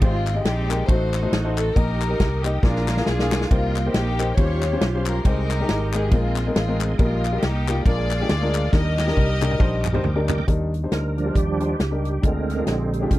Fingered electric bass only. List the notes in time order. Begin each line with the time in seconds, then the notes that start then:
0.02 G#1
0.44 A#1
0.89 A1
1.32 A1
1.76 A#1
2.20 C2
2.63 A#1
3.07 B1
3.51 C2
3.94 A#1
4.38 D#2
4.82 B1
5.25 C2
5.69 G#1
6.12 A#1
6.56 A1
6.99 A#1
7.43 C2
7.86 A#1
8.30 D2
8.73 D#2
9.17 C2
9.60 A#1
10.05 D2
10.48 D#2
10.92 D2
11.36 D#2
11.79 C#2
12.24 D2
12.67 A#1
13.11 C2